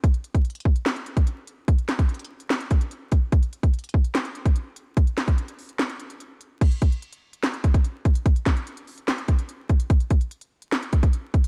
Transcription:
\new DrumStaff \with { instrumentName = "Drums" } \drummode { \time 4/4 \tempo 4 = 146 <hh bd>16 hh16 hh16 <hh bd>16 hh32 hh32 hh32 hh32 bd16 hh16 <hc hh sn>16 hh16 hh16 <hh bd>16 hh8 hh8 | <hh bd>16 hh16 <hc hh sn>16 <hh bd>16 hh32 hh32 hh32 hh16. hh16 <hc hh sn>16 hh16 <hh bd>16 hh16 hh8 <hh bd>8 | <hh bd>16 hh16 hh16 <hh bd>16 hh32 hh32 hh32 hh32 bd16 hh16 <hc hh sn>16 hh16 hh16 <hh bd>16 hh8 hh8 | <hh bd>16 hh16 <hc hh sn>16 <hh bd>16 hh16 hh16 hho16 hh16 <hc hh sn>16 hh16 hh16 hh16 hh8 hh8 |
<cymc hh bd>16 hh16 <hh bd>16 hh16 hh16 hh8 hh16 <hc hh sn>16 hh16 <hh bd>16 <hh bd>16 hh8 <hh bd>16 hh16 | <hh bd>16 hh16 <hc hh bd sn>16 hh16 hh16 hh16 hho16 hh16 <hc hh sn>16 hh16 <hh bd>16 hh16 hh8 <hh bd>16 hh16 | <hh bd>16 hh16 <hh bd>16 hh16 hh16 hh8 hh16 <hc hh sn>16 hh16 <hh bd>16 <hh bd>16 hh8 <hh bd>16 hh16 | }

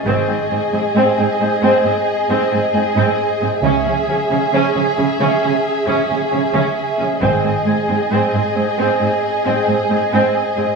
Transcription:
<<
  \new Staff \with { instrumentName = "Celesta" } { \time 4/4 \tempo 4 = 67 <cis''' a'''>2 r2 | r1 | r8 <gis'' gis'''>2. r8 | }
  \new Staff \with { instrumentName = "Violin section" } { \time 4/4 dis''1 | e''1 | dis''1 | }
  \new Staff \with { instrumentName = "Violin section" } { \time 4/4 gis'1 | gis'1 | gis'1 | }
  \new Staff \with { instrumentName = "Viola section" } { \time 4/4 bis16 bis16 bis16 bis16 bis16 bis16 bis16 bis16 bis16 r16 bis16 bis16 bis16 bis16 r16 bis16 | cis'16 cis'16 cis'16 cis'16 cis'16 cis'16 cis'16 cis'16 cis'16 r16 cis'16 cis'16 cis'16 cis'16 r16 cis'16 | bis16 bis16 bis16 bis16 bis16 bis16 bis16 bis16 bis16 r16 bis16 bis16 bis16 bis16 r16 bis16 | }
  \new Staff \with { instrumentName = "Cello section" } { \clef bass \time 4/4 gis,16 gis,16 gis,16 gis,16 gis,16 gis,16 gis,16 gis,16 gis,16 r16 gis,16 gis,16 gis,16 gis,16 r16 gis,16 | cis16 cis16 cis16 cis16 cis16 cis16 cis16 cis16 cis16 r16 cis16 cis16 cis16 cis16 r16 cis16 | gis,16 gis,16 gis,16 gis,16 gis,16 gis,16 gis,16 gis,16 gis,16 r16 gis,16 gis,16 gis,16 gis,16 r16 gis,16 | }
  \new Staff \with { instrumentName = "Double bass section" } { \clef bass \time 4/4 gis,,16 r2. r8. | cis,16 r2. r8. | gis,,16 r2. r8. | }
>>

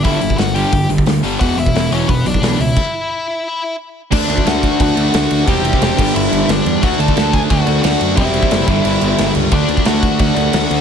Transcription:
<<
  \new Staff \with { instrumentName = "Lead electric guitar" } { \time 4/4 \key d \lydian \tempo 4 = 177 <e' e''>4 <fis' fis''>8 <g' g''>4 r4. | <fis' fis''>8 <e' e''>4 <cis' cis''>8 <b b'>8 <d' d''>4 <e' e''>8~ | <e' e''>2. r4 | <d' d''>4 <fis' fis''>4 <fis' fis''>2 |
<g' g''>4 <g' g''>4 <e' e''>4 <d' d''>4 | <fis' fis''>8 <a' a''>4 <gis' gis''>8 <fis' fis''>4 <fis' fis''>4 | <e' e''>2.~ <e' e''>8 r8 | <d' d''>4 <fis' fis''>4 <fis' fis''>2 | }
  \new Staff \with { instrumentName = "Overdriven electric guitar" } { \time 4/4 \key d \lydian r1 | r1 | r1 | <d a d'>2~ <d a d'>8 <d a d'>8 <d a d'>4 |
<c g c'>4. <g, d g>2~ <g, d g>8 | <d a d'>2~ <d a d'>8 <d a d'>8 <d a d'>4 | <c g c'>4. <g, d g>2~ <g, d g>8 | <d a d'>2~ <d a d'>8 <d a d'>8 <d a d'>4 | }
  \new Staff \with { instrumentName = "Distorted electric guitar" } { \clef bass \time 4/4 \key d \lydian <g, d g>8 <g, d>8 <g, d>8 <g, d g>8 <g, d>8 <g, d>8 <g, d>8 <g, d g>8 | <e, b, e>8 <e, b,>8 <e, b,>8 <e, b, e>8 <e, b,>8 <e, b,>8 <e, b, e>8 <e, b,>8 | r1 | <d a d'>1 |
<c g c'>4. <g, d g>2~ <g, d g>8 | <d a d'>1 | <c g c'>4. <g, d g>2~ <g, d g>8 | <d a d'>1 | }
  \new Staff \with { instrumentName = "Distorted electric guitar" } { \clef bass \time 4/4 \key d \lydian <g, d g>8 <g, d>8 <g, d>8 <g, d g>8 <g, d>8 <g, d>8 <g, d>8 <g, d g>8 | <e, b, e>8 <e, b,>8 <e, b,>8 <e, b, e>8 <e, b,>8 <e, b,>8 <e, b, e>8 <e, b,>8 | r1 | <d a d'>1 |
<c g c'>4. <g, d g>2~ <g, d g>8 | <d a d'>1 | <c g c'>4. <g, d g>2~ <g, d g>8 | <d a d'>1 | }
  \new Staff \with { instrumentName = "Picked electric bass" } { \clef bass \time 4/4 \key d \lydian g,,8 g,,8 g,,4 g,,8 g,,8 d,8 g,,8 | e,,8 e,,8 e,,8 e,,8 e,,8 b,,8 b,,8 cis,8 | r1 | d,8 d,8 d,4 d,8 d,8 d,8 d,8 |
e,,4 e,,8 g,,8 g,,8 g,,8 g,,8 e,8 | d,8 d,8 d,4 d,8 d,8 d,8 fis,8 | e,,4 fis,,8 g,,8 g,,8 g,,8 g,,8 cis,8 | d,8 d,8 d,4 d,8 d,8 d,8 d,8 | }
  \new DrumStaff \with { instrumentName = "Drums" } \drummode { \time 4/4 <hho bd>8 hho16 bd16 <hho sn>8 hho8 <hho bd>8 hho16 bd16 <hho sn>8 hho8 | <hho bd>8 hho16 bd16 <hho sn>8 hho8 <hho bd>8 hho16 bd16 <hho sn>8 hho8 | <cymc bd>4 r4 r4 r4 | <cymc bd>8 cymc16 bd16 <cymc sn>8 <cymc bd>8 <cymc bd>8 cymc8 <cymc sn>8 cymc8 |
<cymc bd>8 cymc16 bd16 <cymc sn>8 <cymc bd>8 cymc8 cymc8 <cymc sn>8 cymc8 | <cymc bd>8 cymc16 bd16 <cymc sn>8 <cymc bd>8 <cymc bd>8 cymc8 <cymc sn>8 cymc8 | <cymc bd>8 cymc16 bd16 <cymc sn>8 <cymc bd>8 cymc8 cymc8 <cymc sn>8 cymc8 | <cymc bd>8 cymc16 bd16 <cymc sn>8 <cymc bd>8 <cymc bd>8 cymc8 <cymc sn>8 cymc8 | }
>>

